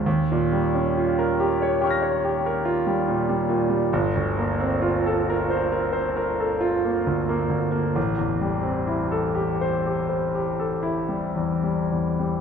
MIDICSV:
0, 0, Header, 1, 2, 480
1, 0, Start_track
1, 0, Tempo, 862069
1, 29, Time_signature, 9, 3, 24, 8
1, 2428, Tempo, 900901
1, 4348, Tempo, 934579
1, 5308, Tempo, 990099
1, 5788, Tempo, 1086957
1, 6487, End_track
2, 0, Start_track
2, 0, Title_t, "Grand piano"
2, 0, Program_c, 0, 0
2, 0, Control_c, 0, 64, 127
2, 35, Note_on_c, 0, 39, 74
2, 39, Control_c, 0, 64, 0
2, 119, Control_c, 0, 64, 127
2, 177, Note_on_c, 0, 46, 59
2, 291, Note_on_c, 0, 55, 52
2, 362, Note_off_c, 0, 46, 0
2, 416, Note_on_c, 0, 61, 53
2, 479, Note_off_c, 0, 55, 0
2, 543, Note_on_c, 0, 65, 49
2, 600, Note_off_c, 0, 61, 0
2, 661, Note_on_c, 0, 70, 65
2, 722, Note_off_c, 0, 65, 0
2, 779, Note_on_c, 0, 67, 66
2, 840, Note_off_c, 0, 70, 0
2, 903, Note_on_c, 0, 73, 64
2, 957, Note_off_c, 0, 67, 0
2, 1006, Note_on_c, 0, 67, 54
2, 1010, Note_on_c, 0, 79, 40
2, 1022, Note_on_c, 0, 85, 43
2, 1041, Note_on_c, 0, 89, 41
2, 1061, Note_on_c, 0, 94, 45
2, 1078, Note_off_c, 0, 73, 0
2, 1126, Note_on_c, 0, 73, 55
2, 1188, Note_off_c, 0, 67, 0
2, 1250, Note_on_c, 0, 67, 58
2, 1307, Note_off_c, 0, 73, 0
2, 1371, Note_on_c, 0, 70, 59
2, 1429, Note_off_c, 0, 67, 0
2, 1476, Note_on_c, 0, 65, 63
2, 1549, Note_off_c, 0, 70, 0
2, 1597, Note_on_c, 0, 55, 54
2, 1662, Note_off_c, 0, 65, 0
2, 1715, Note_on_c, 0, 46, 59
2, 1782, Note_off_c, 0, 55, 0
2, 1833, Note_on_c, 0, 55, 59
2, 1900, Note_off_c, 0, 46, 0
2, 1944, Note_on_c, 0, 46, 51
2, 2018, Note_off_c, 0, 55, 0
2, 2059, Note_on_c, 0, 55, 53
2, 2134, Note_off_c, 0, 46, 0
2, 2163, Note_off_c, 0, 39, 0
2, 2167, Note_off_c, 0, 79, 0
2, 2174, Note_off_c, 0, 85, 0
2, 2180, Note_off_c, 0, 55, 0
2, 2183, Note_off_c, 0, 89, 0
2, 2188, Note_on_c, 0, 31, 79
2, 2191, Control_c, 0, 64, 0
2, 2193, Note_off_c, 0, 94, 0
2, 2273, Control_c, 0, 64, 127
2, 2314, Note_on_c, 0, 38, 57
2, 2439, Note_on_c, 0, 58, 50
2, 2505, Note_off_c, 0, 38, 0
2, 2554, Note_on_c, 0, 60, 54
2, 2628, Note_off_c, 0, 58, 0
2, 2671, Note_on_c, 0, 65, 57
2, 2747, Note_off_c, 0, 60, 0
2, 2802, Note_on_c, 0, 69, 62
2, 2867, Note_off_c, 0, 65, 0
2, 2926, Note_on_c, 0, 70, 63
2, 2992, Note_off_c, 0, 69, 0
2, 3036, Note_on_c, 0, 72, 55
2, 3114, Note_off_c, 0, 70, 0
2, 3152, Note_on_c, 0, 70, 58
2, 3228, Note_off_c, 0, 72, 0
2, 3262, Note_on_c, 0, 72, 57
2, 3347, Note_off_c, 0, 70, 0
2, 3389, Note_on_c, 0, 70, 54
2, 3463, Note_off_c, 0, 72, 0
2, 3513, Note_on_c, 0, 69, 50
2, 3588, Note_off_c, 0, 70, 0
2, 3625, Note_on_c, 0, 65, 62
2, 3710, Note_off_c, 0, 69, 0
2, 3750, Note_on_c, 0, 58, 47
2, 3824, Note_off_c, 0, 65, 0
2, 3870, Note_on_c, 0, 38, 55
2, 3945, Note_off_c, 0, 58, 0
2, 3989, Note_on_c, 0, 58, 54
2, 4062, Note_off_c, 0, 38, 0
2, 4098, Note_on_c, 0, 38, 47
2, 4180, Note_off_c, 0, 58, 0
2, 4215, Note_on_c, 0, 58, 53
2, 4294, Note_off_c, 0, 38, 0
2, 4331, Note_off_c, 0, 31, 0
2, 4342, Note_off_c, 0, 58, 0
2, 4343, Note_on_c, 0, 33, 65
2, 4357, Control_c, 0, 64, 0
2, 4430, Control_c, 0, 64, 127
2, 4455, Note_on_c, 0, 40, 52
2, 4578, Note_on_c, 0, 55, 50
2, 4650, Note_off_c, 0, 40, 0
2, 4688, Note_on_c, 0, 60, 51
2, 4772, Note_off_c, 0, 55, 0
2, 4814, Note_on_c, 0, 64, 47
2, 4887, Note_off_c, 0, 60, 0
2, 4938, Note_on_c, 0, 69, 55
2, 5011, Note_off_c, 0, 64, 0
2, 5058, Note_on_c, 0, 67, 55
2, 5134, Note_off_c, 0, 69, 0
2, 5195, Note_on_c, 0, 72, 54
2, 5256, Note_off_c, 0, 67, 0
2, 5322, Note_on_c, 0, 67, 50
2, 5384, Note_off_c, 0, 72, 0
2, 5434, Note_on_c, 0, 72, 43
2, 5505, Note_off_c, 0, 67, 0
2, 5559, Note_on_c, 0, 67, 50
2, 5622, Note_off_c, 0, 72, 0
2, 5677, Note_on_c, 0, 69, 45
2, 5746, Note_off_c, 0, 67, 0
2, 5790, Note_on_c, 0, 64, 54
2, 5861, Note_off_c, 0, 69, 0
2, 5904, Note_on_c, 0, 55, 43
2, 5973, Note_off_c, 0, 64, 0
2, 6025, Note_on_c, 0, 40, 47
2, 6092, Note_off_c, 0, 55, 0
2, 6145, Note_on_c, 0, 55, 44
2, 6215, Note_off_c, 0, 40, 0
2, 6272, Note_on_c, 0, 40, 36
2, 6337, Note_off_c, 0, 55, 0
2, 6393, Note_on_c, 0, 55, 42
2, 6464, Note_off_c, 0, 40, 0
2, 6487, Note_off_c, 0, 33, 0
2, 6487, Note_off_c, 0, 55, 0
2, 6487, End_track
0, 0, End_of_file